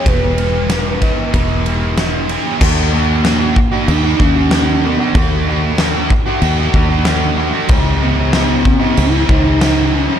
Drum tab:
CC |--------|x-x-x-x-|x-x-x-x-|x-x-x-x-|
RD |xxxxxxxx|--------|--------|--------|
SD |--o---o-|--o---o-|--o---o-|--o---o-|
BD |o--oo---|o--o-o--|o--o-o--|o--o-o--|